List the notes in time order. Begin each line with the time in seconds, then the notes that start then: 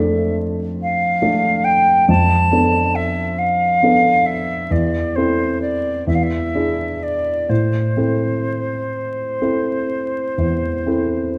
Already playing: F2 A3 D4 A4 E5
0.82 F5
1.22 A3 D4 A4
1.64 G5
2.08 F2 A5
2.52 B3 D4 A4
2.95 E5
3.38 F5
3.83 B3 D4 A4
4.26 E5
4.71 E2 D5
5.15 C4 E4 A4 C5
5.61 D5
6.07 E2 E5
6.15 F5
6.23 E5
6.55 D4 E4 G#4
7.03 D5
7.49 A2 C5
7.97 C4 E4 A4
9.42 C4 E4 A4
10.38 E2
10.87 C4 E4 A4